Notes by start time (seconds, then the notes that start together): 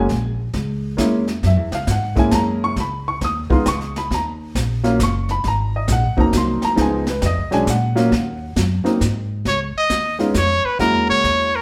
Already playing: G#5
0.09 A#1, brush sweep, kick, snare
0.53 C#2, kick, snare
0.97 E2 G#3 A#3 C#4 E4, kick, snare, hi-hat pedal
1.27 snare
1.43 F#2 E5, brush sweep, kick, snare
1.57 E2
1.72 C#2 F5, snare
1.87 G#2, kick, snare, hi-hat pedal
1.91 F#5
2.15 G#3 A#3 C#4 E4 G#5, kick, snare
2.31 F#2 A5, kick, snare, hi-hat pedal
2.35 A#5
2.64 C#6
2.76 C#2 B5, brush sweep, kick, snare
3.08 C#6
3.21 D#2 D#6, kick, snare
3.50 G#3 B3 D#4 F4 C6, kick
3.66 C#2 C#6, kick, snare, hi-hat pedal
3.81 snare
3.96 B5, snare
4.11 D#2 A#5, brush sweep, kick, snare
4.55 A#1, kick, snare, hi-hat pedal
4.83 F#3 A#3 C#4 F4, snare
4.99 F#1 C#6, kick, snare, hi-hat pedal
5.29 B5, snare
5.44 G#1, brush sweep, kick, snare
5.48 A#5
5.76 D#5
5.88 A#1, kick, snare, hi-hat pedal
5.92 F#5
6.03 G#1
6.17 F#1 F#3 A#3 C4 D#4 A#5, kick
6.33 C2, kick, snare, hi-hat pedal
6.37 C6
6.62 A#5, muted upright bass stroke, snare
6.76 C#2 F3 G#3 B3 D#4, brush sweep, kick, snare
6.82 G#5
7.07 B4, snare
7.22 F2, kick, snare, hi-hat pedal
7.26 D#5
7.37 C#2
7.51 B1 F#3 G#3 C#4 D4 G#5, snare
7.67 A#2 F#5, kick, snare, hi-hat pedal
7.95 F#3 A#3 C#4 F4, snare
8.12 D#2, brush sweep, kick, snare
8.56 F#2, kick, snare, hi-hat pedal
8.84 F#3 A#3 C4 D#4, muted upright bass stroke, snare
9.01 G#2, kick, snare, hi-hat pedal
9.45 C#2 C#5, brush sweep, kick, snare
9.75 D#5, muted upright bass stroke
9.90 D#2, kick, snare, hi-hat pedal
10.19 G#3 B3 C#4 D#4 F4, snare
10.34 F2 C#5, kick, snare, hi-hat pedal
10.64 B4, muted upright bass stroke
10.79 F#2 G#3 A#3 C#4 E4 F#4 A#4, brush sweep, kick, snare
10.94 E2
11.10 C#2 C#5
11.24 E2, kick, snare
11.56 A#4